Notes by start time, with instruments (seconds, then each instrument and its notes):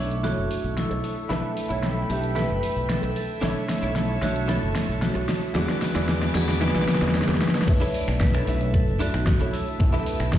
Already playing: fingered electric bass B1, grand piano A3 D4 C#5, vibraphone D4, string section A4 E5 C#6
0.00 grand piano E4
0.11 closed hi-hat
0.23 clean electric guitar D4 E4 A4 C#5, vibraphone F#4, snare, closed hi-hat
0.38 fingered electric bass F#1
0.50 muted clean electric guitar stroke, open hi-hat
0.64 fingered electric bass B1
0.77 vibraphone E4, snare, closed hi-hat
0.90 fingered electric bass B1, muted clean electric guitar stroke, closed hi-hat
1.03 vibraphone E4, muted clean electric guitar stroke, open hi-hat
1.29 fingered electric bass B1, grand piano A3 B3 D4 E4, clean electric guitar E4 A4 B4, string section G5 B5, snare, closed hi-hat
1.57 open hi-hat
1.69 fingered electric bass B1, clean electric guitar E4 A4 C#5, closed hi-hat
1.83 snare, closed hi-hat
2.09 fingered electric bass B1, grand piano A3 B3 D4 E4, vibraphone G4, open hi-hat
2.24 closed hi-hat
2.35 clean electric guitar E4 A4 B4, vibraphone B4, snare, closed hi-hat
2.50 fingered electric bass F#1
2.62 muted clean electric guitar stroke, open hi-hat
2.77 fingered electric bass B1
2.89 vibraphone A4, snare, closed hi-hat
3.02 fingered electric bass B1, muted clean electric guitar stroke, closed hi-hat
3.15 vibraphone A4, muted clean electric guitar stroke, open hi-hat
3.41 fingered electric bass B1, grand piano A3 D4 E4 C#5, clean electric guitar D4 E4 A4 C#5, string section C#5 A5, snare, closed hi-hat
3.69 snare, open hi-hat
3.82 fingered electric bass B1, clean electric guitar D4 E4 A4 C#5, closed hi-hat
3.96 snare, closed hi-hat
4.22 fingered electric bass B1, grand piano A3 D4 E4 C#5, vibraphone F#4, snare, open hi-hat
4.36 closed hi-hat
4.48 clean electric guitar D4 E4 A4 C#5, vibraphone A4, snare, closed hi-hat
4.62 fingered electric bass F#1
4.74 muted clean electric guitar stroke, snare, open hi-hat
4.89 fingered electric bass B1
5.02 vibraphone F#4, snare, closed hi-hat
5.14 fingered electric bass B1, muted clean electric guitar stroke, closed hi-hat
5.28 vibraphone F#4, muted clean electric guitar stroke, snare, open hi-hat
5.54 fingered electric bass E2, grand piano G#3 B3 D4 F#4, clean electric guitar E4 G#4 D5, string section B4 G#5 D6, snare, closed hi-hat
5.69 snare
5.82 snare, open hi-hat
5.94 fingered electric bass E2, clean electric guitar E4 G#4 D5, snare, closed hi-hat
6.09 snare, closed hi-hat
6.22 snare, closed hi-hat
6.34 fingered electric bass E2, grand piano G#3 B3 D4 F#4, vibraphone G#4, snare, open hi-hat
6.49 snare, closed hi-hat
6.61 clean electric guitar E4 G#4 D5, vibraphone B4, snare, closed hi-hat
6.68 snare
6.75 fingered electric bass B1, snare, closed hi-hat
6.82 snare
6.87 muted clean electric guitar stroke, snare, open hi-hat
6.95 snare
7.02 fingered electric bass E2, snare, closed hi-hat
7.08 snare
7.14 vibraphone G#4, snare, closed hi-hat
7.22 snare
7.27 fingered electric bass E2, muted clean electric guitar stroke, snare, closed hi-hat
7.35 snare
7.40 vibraphone G#4 B4, muted clean electric guitar stroke, snare, open hi-hat
7.48 snare
7.55 snare, closed hi-hat
7.62 snare
7.67 fingered electric bass B1, grand piano A3 D4 E4 C#5, string section E5 A5, kick, closed hi-hat, crash, shaker
7.80 clean electric guitar D4 E4 A4 C#5, shaker
7.94 vibraphone D5, open hi-hat, shaker
8.08 fingered electric bass B1, finger snap, closed hi-hat, shaker
8.20 vibraphone B4, kick, snare, closed hi-hat, shaker
8.34 clean electric guitar D4 E4 A4 C#5, vibraphone A4, finger snap, shaker
8.47 fingered electric bass B1, grand piano A3 D4 E4, vibraphone B4, open hi-hat, shaker
8.61 closed hi-hat, shaker
8.74 vibraphone A4, kick, closed hi-hat, shaker
8.87 fingered electric bass F#1, shaker
8.99 clean electric guitar D4 E4 A4 D5, vibraphone F#4, open hi-hat, shaker
9.14 fingered electric bass B1, finger snap, shaker
9.26 muted clean electric guitar stroke, kick, snare, closed hi-hat, shaker
9.40 fingered electric bass B1, clean electric guitar D4 E4 A4 C#5, closed hi-hat, shaker
9.53 vibraphone E4, open hi-hat, shaker
9.68 shaker
9.79 fingered electric bass B1, grand piano A3 B3 D4 E4, string section B4 G5 E6, kick, closed hi-hat, shaker
9.93 clean electric guitar E4 G4 A4 B4, snare, shaker
10.06 open hi-hat, shaker
10.20 fingered electric bass B1, finger snap, closed hi-hat, shaker
10.33 kick, snare, closed hi-hat, shaker